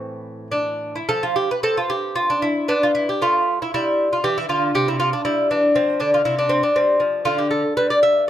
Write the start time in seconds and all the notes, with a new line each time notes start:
Already playing: A2 E3 A3 C4
0.52 D4
0.96 E4
1.09 F3 A4
1.23 F4
1.36 G4
1.51 B4
1.63 C4 A4
1.77 F4
1.90 G4
2.15 F4
2.30 D4
2.42 E4
2.68 B3 D4
2.83 F4
2.95 E4
3.09 G4
3.22 A3 F4
3.62 E4
3.74 G3 E4
4.13 F4
4.24 E3 G4
4.38 E4
4.49 D3 F4
4.75 C3 G4
4.88 E4
5.00 F4
5.13 D4
5.25 G3 E4
5.51 E3 D4
5.75 F3 C4
6.00 D3 D4
6.14 F4
6.25 C3 E4
6.39 D4
6.49 C4
6.63 D4
6.76 G3 C4
7.00 F3
7.25 D3 F4
7.38 G4
7.51 A4
7.77 G3 B4
7.90 D5
8.03 E5